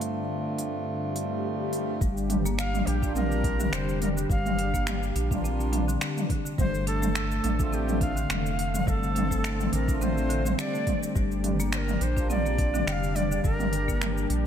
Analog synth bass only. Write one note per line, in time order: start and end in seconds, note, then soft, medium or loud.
2.01 2.83 G1 loud
2.87 3.69 A#1 medium
3.73 4.26 F1 medium
4.30 5.12 G1 loud
5.16 5.97 A#1 medium
6.58 7.40 G1 loud
7.45 8.26 A1 medium
8.30 8.83 F1 medium
8.87 9.69 G1 medium
9.73 10.55 A1 medium
11.16 11.97 G1 medium
12.01 12.83 A#1 medium
12.87 13.40 F1 medium
13.44 14.26 G1 loud
14.30 14.47 A#1 medium